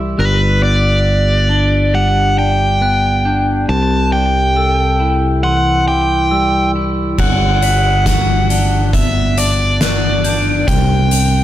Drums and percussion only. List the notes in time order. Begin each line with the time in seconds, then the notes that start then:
7.18 kick, crash
7.62 closed hi-hat
8.06 kick, snare, closed hi-hat
8.50 closed hi-hat
8.93 kick, closed hi-hat
9.37 closed hi-hat
9.81 snare, closed hi-hat
10.24 closed hi-hat
10.68 kick, closed hi-hat
11.11 closed hi-hat